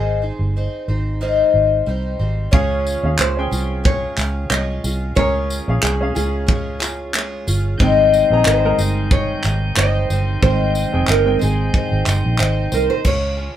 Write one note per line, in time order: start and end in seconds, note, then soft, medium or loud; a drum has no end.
0.00 0.30 G#1 medium
0.00 0.22 G#2 medium
0.00 0.22 D#3 medium
0.00 0.22 C4 medium
0.00 0.22 D#4 medium
0.00 1.85 G#4 medium
0.00 0.21 C5 medium
0.22 0.55 C4 soft
0.22 0.55 D#4 soft
0.22 0.55 C5 soft
0.39 0.67 G1 medium
0.56 0.89 C4 medium
0.56 0.88 D#4 medium
0.56 0.87 C5 medium
0.88 1.42 G#1 medium
0.88 1.21 C4 soft
0.88 1.21 D#4 soft
0.88 1.21 C5 medium
1.21 1.87 G#2 medium
1.21 1.87 D#3 medium
1.21 1.86 C4 medium
1.21 1.87 D#4 medium
1.21 1.88 C5 medium
1.54 1.81 G#1 medium
1.86 2.14 C2 medium
1.86 2.20 G3 medium
1.86 2.19 C4 medium
1.86 2.19 D#4 medium
1.86 2.18 C5 medium
2.19 2.47 G#1 medium
2.19 2.51 G3 soft
2.19 2.52 C4 soft
2.19 2.52 D#4 soft
2.19 2.53 C5 soft
2.51 2.95 C#2 loud
2.51 3.51 C#3 medium
2.51 3.83 G#3 medium
2.51 2.91 C#4 medium
2.51 3.52 C#4 medium
2.51 3.51 F4 medium
2.51 2.91 G#4 medium
2.51 3.51 G#4 medium
2.51 2.92 F5 loud
2.51 kick loud
2.87 tambourine medium
3.03 3.16 D#2 medium
3.03 3.28 C#4 medium
3.03 3.29 G#4 medium
3.03 3.29 F5 medium
3.19 3.46 C#2 medium
3.19 3.85 C5 medium
3.19 clap loud
3.37 4.38 C#4 medium
3.37 4.39 G#4 medium
3.37 4.39 G5 medium
3.51 4.06 C2 medium
3.51 3.84 C#4 soft
3.51 3.84 F4 soft
3.51 3.85 G#4 medium
3.51 tambourine medium
3.84 4.17 G#3 medium
3.84 4.18 C#4 medium
3.84 4.17 F4 medium
3.84 4.16 G#4 medium
3.84 4.50 C#5 medium
3.84 kick loud
4.17 4.45 C#2 medium
4.17 4.49 C#4 soft
4.17 4.50 F4 soft
4.17 4.50 G#4 soft
4.17 clap medium
4.17 tambourine medium
4.50 4.77 C2 medium
4.50 4.83 G#3 medium
4.50 4.83 C#4 medium
4.50 4.84 F4 medium
4.50 4.83 G#4 medium
4.50 5.12 D#5 loud
4.50 clap loud
4.84 5.11 C2 medium
4.84 5.15 C#4 soft
4.84 5.15 F4 soft
4.84 5.15 G#4 soft
4.84 tambourine medium
5.15 5.58 C#2 loud
5.15 6.46 G#3 medium
5.15 6.15 C#4 medium
5.15 5.55 C#4 medium
5.15 6.15 F4 medium
5.15 6.15 G#4 medium
5.15 5.56 G#4 medium
5.15 5.56 A#4 medium
5.15 5.84 C#5 loud
5.15 kick loud
5.50 tambourine medium
5.68 5.80 A#1 medium
5.68 5.92 C#4 medium
5.68 5.93 G#4 medium
5.68 5.93 F5 medium
5.82 6.10 C2 medium
5.82 6.15 G#4 medium
5.82 clap loud
6.01 7.02 C#4 medium
6.01 7.02 G#4 medium
6.01 7.03 F5 medium
6.15 7.43 C#2 medium
6.15 6.46 C#4 soft
6.15 6.48 F4 soft
6.15 6.48 G#4 medium
6.15 7.43 G#4 medium
6.15 tambourine medium
6.46 6.80 G#3 medium
6.46 6.81 C#4 medium
6.46 6.80 F4 medium
6.46 6.78 G#4 medium
6.46 kick loud
6.79 7.13 C#4 soft
6.79 7.14 F4 soft
6.79 7.13 G#4 medium
6.79 clap medium
6.79 tambourine medium
7.14 7.47 G#3 medium
7.14 7.47 C#4 medium
7.14 7.47 F4 medium
7.14 7.46 G#4 medium
7.14 clap loud
7.47 7.74 G1 medium
7.47 7.80 C#4 soft
7.47 7.80 F4 medium
7.47 7.80 G#4 medium
7.47 tambourine medium
7.78 8.22 G#1 loud
7.78 8.78 G#2 medium
7.78 13.00 C3 medium
7.78 13.00 D#3 medium
7.78 8.78 D#3 medium
7.78 8.78 G3 medium
7.78 8.19 G#3 medium
7.78 8.18 C4 medium
7.78 8.79 C4 medium
7.78 8.78 D#4 medium
7.78 8.77 C5 medium
7.78 13.00 G5 medium
7.78 kick loud
7.82 8.20 G5 medium
8.14 tambourine medium
8.30 8.43 A#1 medium
8.30 8.55 C4 medium
8.30 8.56 G#4 medium
8.30 8.57 A#5 medium
8.45 8.72 G#1 medium
8.45 9.12 C5 medium
8.45 clap loud
8.63 9.65 G#3 medium
8.63 9.65 D#4 medium
8.63 9.65 A#4 medium
8.78 9.32 G1 medium
8.78 9.10 G3 soft
8.78 9.12 C4 soft
8.78 9.12 D#4 medium
8.78 9.11 C5 soft
8.78 tambourine medium
9.11 9.44 G3 medium
9.11 9.44 D#4 medium
9.11 9.77 C#5 medium
9.11 kick loud
9.44 9.71 G#1 medium
9.44 9.76 G3 soft
9.44 9.77 D#4 medium
9.44 clap medium
9.44 tambourine soft
9.76 10.04 G1 loud
9.76 10.10 G3 medium
9.76 10.10 C4 medium
9.76 10.10 D#4 medium
9.76 10.09 C5 medium
9.76 10.42 D#5 loud
9.76 clap loud
10.10 10.37 G1 medium
10.10 10.42 G3 soft
10.10 10.42 C4 soft
10.10 10.43 D#4 soft
10.10 10.43 C5 medium
10.10 tambourine medium
10.41 10.84 G#1 loud
10.41 11.41 D#3 medium
10.41 11.42 G3 medium
10.41 10.81 G#3 medium
10.41 10.80 C4 medium
10.41 11.40 C4 medium
10.41 11.39 D#4 medium
10.41 11.10 C5 loud
10.41 11.38 C5 medium
10.41 10.81 G5 medium
10.41 kick loud
10.75 tambourine medium
10.92 11.06 F1 medium
10.92 11.17 C4 medium
10.92 11.18 G#4 medium
10.92 11.19 G5 medium
11.08 11.35 G1 medium
11.08 11.42 A#4 medium
11.08 clap loud
11.25 12.27 G#3 medium
11.25 12.26 C4 medium
11.25 12.27 G5 medium
11.39 11.69 G#1 medium
11.39 11.73 C4 medium
11.39 11.73 D#4 soft
11.39 12.69 G#4 medium
11.39 11.73 C5 medium
11.39 tambourine medium
11.74 12.07 C4 medium
11.74 12.07 D#4 medium
11.74 12.06 C5 medium
11.74 kick medium
11.92 12.04 G#1 medium
12.06 12.21 G1 medium
12.06 12.38 C4 soft
12.06 12.39 D#4 soft
12.06 12.40 C5 medium
12.06 clap medium
12.06 tambourine medium
12.25 12.37 A#1 medium
12.39 12.66 G#1 medium
12.39 12.72 C4 medium
12.39 12.72 D#4 medium
12.39 12.71 C5 medium
12.39 clap loud
12.72 12.87 C2 medium
12.72 13.05 G3 medium
12.72 13.06 C4 medium
12.72 13.06 D#4 medium
12.72 12.92 A#4 medium
12.72 13.05 C5 medium
12.72 tambourine medium
12.90 13.05 C5 medium
13.04 13.47 C#2 medium
13.04 13.38 C#3 medium
13.04 13.38 G#3 medium
13.04 13.38 C#4 medium
13.04 13.37 F4 medium
13.04 13.36 G#4 medium
13.04 13.53 C#5 medium
13.04 kick medium
13.04 crash medium
13.37 13.56 C#4 soft
13.37 13.56 F4 soft
13.37 13.56 G#4 soft